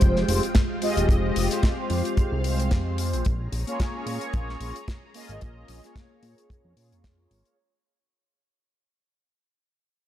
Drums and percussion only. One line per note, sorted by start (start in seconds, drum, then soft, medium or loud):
0.01 kick loud
0.01 closed hi-hat medium
0.16 snare soft
0.29 open hi-hat loud
0.43 closed hi-hat medium
0.55 kick loud
0.55 snare loud
0.55 closed hi-hat medium
0.82 open hi-hat loud
0.97 closed hi-hat medium
1.09 kick loud
1.09 closed hi-hat medium
1.36 open hi-hat loud
1.51 snare soft
1.51 closed hi-hat medium
1.63 kick loud
1.63 snare loud
1.63 closed hi-hat medium
1.90 open hi-hat medium
2.05 closed hi-hat medium
2.17 kick loud
2.17 closed hi-hat medium
2.44 open hi-hat loud
2.59 closed hi-hat medium
2.71 kick loud
2.71 snare loud
2.71 closed hi-hat medium
2.98 open hi-hat loud
3.13 closed hi-hat medium
3.25 kick loud
3.25 closed hi-hat medium
3.52 open hi-hat medium
3.67 closed hi-hat medium
3.80 kick loud
3.80 snare loud
3.80 closed hi-hat medium
4.07 open hi-hat loud
4.21 closed hi-hat medium
4.33 kick loud
4.33 closed hi-hat medium
4.49 snare soft
4.61 open hi-hat loud
4.76 closed hi-hat medium
4.88 kick loud
4.88 snare loud
4.88 closed hi-hat medium
5.14 open hi-hat loud
5.29 closed hi-hat medium
5.41 kick loud
5.41 closed hi-hat medium
5.68 open hi-hat loud
5.84 snare soft
5.84 closed hi-hat medium
5.96 kick loud
5.96 snare loud
5.96 closed hi-hat medium
6.23 open hi-hat medium
6.38 closed hi-hat medium
6.50 kick loud
6.50 closed hi-hat medium
6.77 open hi-hat medium
6.92 closed hi-hat medium
7.04 kick loud
7.04 snare loud
7.04 closed hi-hat medium
7.31 open hi-hat medium
7.45 closed hi-hat medium